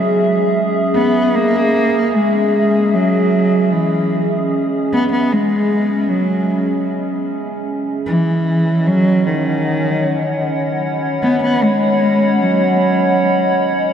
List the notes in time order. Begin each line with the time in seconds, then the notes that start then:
Already playing: F#3 C#4 G#4 D#5 E5
0.95 B3
1.35 A#3
2.16 G#3
2.94 F#3
3.72 E3
4.93 B3
5.12 B3
5.32 G#3
6.09 F#3
7.69 C#4
8.06 E3
8.23 D#5
8.43 C#5
8.62 F#5
8.87 F#3
9.26 D#3
10.16 B5
11.23 B3
11.44 B3
11.63 G#3
12.42 F#3